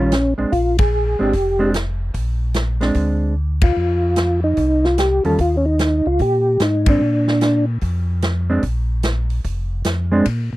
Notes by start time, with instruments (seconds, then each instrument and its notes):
Already playing: tonewheel organ A#1 C#4
0.00 hollow-body jazz guitar D#3 G3 C#4 F4
0.12 snare, closed hi-hat
0.38 tonewheel organ A#1, hollow-body jazz guitar G#3 C4 D4
0.52 tonewheel organ A#1 F4, kick, open hi-hat
0.79 tonewheel organ G#4, kick, ride
1.19 tonewheel organ G#1 G4, hollow-body jazz guitar G#3 C4 D4
1.33 tonewheel organ F1, kick, open hi-hat
1.59 hollow-body jazz guitar G#3 C4 D4
1.74 snare, closed hi-hat
2.14 tonewheel organ A#1, kick, open hi-hat
2.54 snare, closed hi-hat
2.81 hollow-body jazz guitar G#3 C4 D4, snare, open hi-hat
2.94 tonewheel organ D2, kick, open hi-hat
3.61 tonewheel organ F4, kick, ride
3.77 tonewheel organ F2
4.16 snare, closed hi-hat
4.44 tonewheel organ D#4
4.57 tonewheel organ C2, kick, open hi-hat
4.84 tonewheel organ F4, snare
4.98 tonewheel organ G4, snare, closed hi-hat
5.25 tonewheel organ E2 A4, hollow-body jazz guitar D#3 G3 C#4 F4, open hi-hat
5.38 tonewheel organ D#2 F4, kick, open hi-hat
5.57 tonewheel organ C#4
5.66 tonewheel organ D#4
5.79 snare, closed hi-hat
6.06 tonewheel organ C#2 F4
6.19 tonewheel organ A#2 G4, kick, open hi-hat
6.60 tonewheel organ G#2 D#4, snare, closed hi-hat
6.86 hollow-body jazz guitar G#3 C4 D4, tonewheel organ D4, kick, ride
7.01 tonewheel organ A#2
7.27 snare
7.41 snare, closed hi-hat
7.81 tonewheel organ F2, kick, open hi-hat
8.22 snare, closed hi-hat
8.50 hollow-body jazz guitar G#3 C4 D4
8.63 tonewheel organ A#1, kick, open hi-hat
9.03 snare, closed hi-hat
9.30 open hi-hat
9.44 tonewheel organ F1, kick, open hi-hat
9.84 tonewheel organ F2, snare, closed hi-hat
10.12 hollow-body jazz guitar G#3 C4 D4
10.25 tonewheel organ A#2, kick, ride
10.53 tonewheel organ A#2